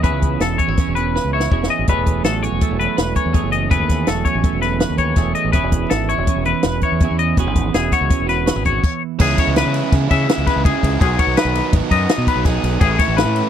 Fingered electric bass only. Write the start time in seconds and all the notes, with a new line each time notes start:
Already playing: E2
0.12 C#2
0.40 E1
0.68 G#1
0.88 E1
1.25 C#2
1.52 E1
1.79 G#1
1.88 E1
1.97 E1
2.24 A1
2.52 E1
2.71 E1
2.98 E1
3.26 E2
3.44 F#1
3.80 D#2
4.08 E1
4.35 A1
4.53 E1
4.90 D#2
5.17 E1
5.45 A1
5.54 E1
5.63 E1
5.91 G#1
6.18 E1
6.36 E1
6.64 E1
6.92 E2
7.11 E2
7.38 E1
7.47 G#1
7.74 E1
8.01 C#2
8.20 E1
8.56 G#1
9.20 C#2
9.47 C#2
9.66 C#3
9.92 C#3
10.11 C#3
10.38 C#2
10.56 C#2
10.83 C#2
11.01 B1
11.27 B1
11.45 B1
11.73 G#1
11.91 F#2
12.18 B2
12.36 B1
12.63 B1
12.81 A1
13.08 A1
13.25 A2